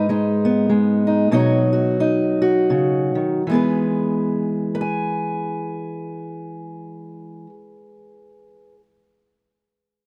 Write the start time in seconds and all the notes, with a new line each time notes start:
Already playing: G#2 B3 B4
0.09 G#3 D#4
0.45 B3
0.70 G#3
1.07 D#4
1.31 B2 F#3 D#4 F#4 C#5
1.73 F#4
2.00 D#4
2.42 F#4
2.70 C#3
3.15 D#3
3.47 E3 G#3
3.51 B3 G#4 B4
4.75 B4
4.81 G#5